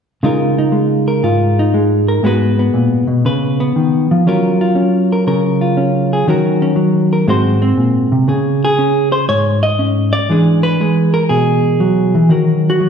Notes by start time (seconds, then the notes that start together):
0.23 C#3 G#3 D#4 F4 A#4
0.58 D#4
0.72 G#3
1.08 A#4
1.23 G#2 F4
1.59 D#4
1.74 G#3
2.08 A#4
2.23 G#2 G#3 B3 F#4 B4
2.59 B3
2.74 A#2
3.08 B2
3.25 C#3 B4
3.60 B3
3.76 D#3
4.11 F3
4.27 F#3 C#4 F4 A#4
4.61 F4
4.75 C#4
5.12 A#4
5.27 C#3 A#4
5.61 F4
5.77 C#4
6.13 G#4
6.27 D#3 F#3 C#4 F#4 A#4
6.62 C#4
6.76 F#3
7.13 A#4
7.27 G#2 G#3 C4 F#4 C5
7.62 C4
7.77 A#2
8.12 C3
8.28 C#3 G#4
8.65 G#4
8.79 C#4
9.12 C5
9.29 G#2 C#5
9.63 D#5
9.79 C#4
10.13 D5
10.30 E3 G#3 D4 G#4
10.63 B4
10.80 G#3 G#4
11.14 A#4
11.29 B2 G#4
11.80 F#3
12.15 E3
12.29 D#3 F#3 F#4 A#4
12.70 F#4
12.80 F#3